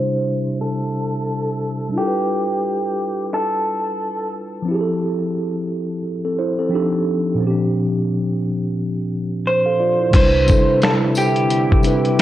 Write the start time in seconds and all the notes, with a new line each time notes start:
Already playing: C3 G3 D4 E4 G4 C5
0.61 A4
1.89 G3 D4
1.94 E4 F4 G4
1.99 A4 A#4
2.08 B4
3.34 A4
4.62 F3 C4
4.68 E4 G4
4.74 G#4
4.81 A4
6.25 C4 A4
6.39 E4 C5
6.59 C4 A4
6.70 F3 C4 D4 D#4
6.75 G4 A4
7.35 A#2 F3
7.41 C4 C#4
7.47 D4 G4
9.47 C5
9.66 A4 F5
9.79 F4 D5
10.00 E4 C5
10.10 C2 C3 D3 G3 C4 D4 E4, kick, closed hi-hat, crash
10.15 E4 B4 C5
10.44 C3 G3 D4, closed hi-hat, tambourine
10.49 E4 A4, kick
10.82 A4, finger snap, snare, closed hi-hat
11.15 G4, closed hi-hat, tambourine
11.36 closed hi-hat
11.51 closed hi-hat
11.72 kick
11.81 C3 G3 D4, closed hi-hat, tambourine
11.86 E4 B4
12.05 closed hi-hat